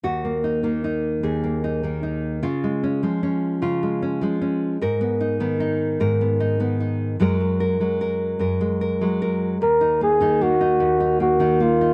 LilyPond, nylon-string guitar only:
\new Staff \with { instrumentName = "Nylon-string guitar" } { \time 3/4 \key ees \minor \tempo 4 = 75 << { ges'16 bes16 ees'16 bes16 ees'8 aes'16 bes16 ees'16 bes16 ees'8 | f'16 aes16 des'16 aes16 des'8 f'16 aes16 des'16 aes16 des'8 | bes'16 ces'16 ees'16 ces'16 ees'8 bes'16 ces'16 ees'16 ces'16 ees'8 | <ges aes bes'>16 aes16 bes'16 aes16 bes'8 bes'16 aes16 bes'16 aes16 bes'8 |
r16 ees'16 bes16 ees'16 bes16 ees'8 ees'16 bes16 ees'16 bes16 ees'16 | } \\ { ees,8. ees8. ees,8. ees8. | des8. f8. des8. f8. | aes,8. ees8. aes,8. ees8. | ges,8. ges8. ges,8. ges8. |
ees,8. ees8. ees,8. ees8. | } >> }